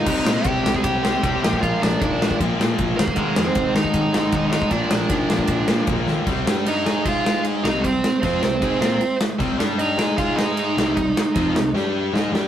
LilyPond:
<<
  \new Staff \with { instrumentName = "Lead electric guitar" } { \time 4/4 \key c \minor \tempo 4 = 154 <ees' ees''>8. <g' g''>8. <g' g''>16 <aes' aes''>16 <g' g''>2 | <f' f''>8 <d' d''>8 <d' d''>4 r4. <bes bes'>8~ | <bes bes'>8. <c' c''>8. <ees' ees''>2 <ees' ees''>8 | <d' d''>2. r4 |
r4 <ees' ees''>4 <f' f''>4 r8 <ees' ees''>8 | <c' c''>4 <c' c''>2~ <c' c''>8 r8 | r4 <ees' ees''>4 <f' f''>8 <ees' ees''>4.~ | <ees' ees''>2 r2 | }
  \new Staff \with { instrumentName = "Distorted electric guitar" } { \clef bass \time 4/4 \key c \minor <c g c'>2.~ <c g c'>8 <bes, f bes>8~ | <bes, f bes>2.~ <bes, f bes>8 r8 | <aes, ees aes>1 | <bes, f bes>1 |
<c g c'>8 <g d' g'>4 <aes ees' aes'>2 <c g c'>8 | <c g>8 r8 <f c' f'>8 <c g>8 <aes ees' aes'>8 <bes f' bes'>8 r4 | <c g c'>8 <g d' g'>4 <aes ees' aes'>2 <c g c'>8 | <c g>8 r8 <f c' f'>8 <c g>8 <g d' g'>4 <aes ees' aes'>8 <g d' g'>8 | }
  \new Staff \with { instrumentName = "Overdriven electric guitar" } { \clef bass \time 4/4 \key c \minor <c g c'>2~ <c g c'>8 <c g c'>8 <c g c'>8 <bes, f bes>8~ | <bes, f bes>2 <bes, f bes>8 <bes, f bes>4 r8 | <aes, ees aes>2~ <aes, ees aes>8 <aes, ees aes>8 <aes, ees aes>4 | <bes, f bes>2~ <bes, f bes>8 <bes, f bes>8 <bes, f bes>4 |
<c g c'>8 <g d' g'>4 <aes ees' aes'>2 <c g c'>8 | <c g>8 r8 <f c' f'>8 <c g>8 <aes ees' aes'>8 <bes f' bes'>8 r4 | <c g c'>8 <g d' g'>4 <aes ees' aes'>2 <c g c'>8 | <c g>8 r8 <f c' f'>8 <c g>8 <g d' g'>4 <aes ees' aes'>8 <g d' g'>8 | }
  \new Staff \with { instrumentName = "Picked electric bass" } { \clef bass \time 4/4 \key c \minor c,8 bes,8 c,8 c,8 c,8 c,8 c,8 bes,,8 | bes,,8 bes,,8 aes,8 bes,,8 bes,,8 bes,8 bes,,8 aes,,8 | aes,,8 f,8 aes,,8 aes,,8 aes,,8 aes,,8 aes,,4 | bes,,8 bes,,8 aes,8 bes,,8 bes,,8 bes,8 bes,,8 aes,,8 |
c,8 g,4 aes,2 c,8 | c,8 r8 f,8 c,8 aes,8 bes,8 r4 | c,8 g,4 aes,2 c,8 | c,8 r8 f,8 c,8 g,4 aes,8 g,8 | }
  \new DrumStaff \with { instrumentName = "Drums" } \drummode { \time 4/4 <cymc bd>8 sn8 <bd cymr>8 sn16 bd16 <bd cymr>8 sn8 <bd cymr>8 sn16 bd16 | <bd cymr>8 sn8 <bd cymr>8 sn16 bd16 <bd cymr>8 sn8 <bd cymr>8 sn16 bd16 | <bd cymr>8 sn8 <bd cymr>8 sn16 bd16 <bd cymr>8 sn8 <bd cymr>8 sn16 bd16 | <bd cymr>8 sn8 <bd cymr>8 sn16 bd16 <bd cymr>8 sn8 <bd cymr>8 sn8 |
<cymc bd>8 sn8 cymc8 sn8 <cymc bd>8 sn8 cymc8 sn8 | <cymc bd>8 sn8 <cymc bd>8 sn8 <cymc bd>8 sn8 cymc8 sn8 | <cymc bd>8 sn8 cymc8 sn8 <cymc bd>8 sn8 cymc8 sn8 | <cymc bd>8 sn8 <cymc bd>8 sn8 sn4 sn8 sn8 | }
>>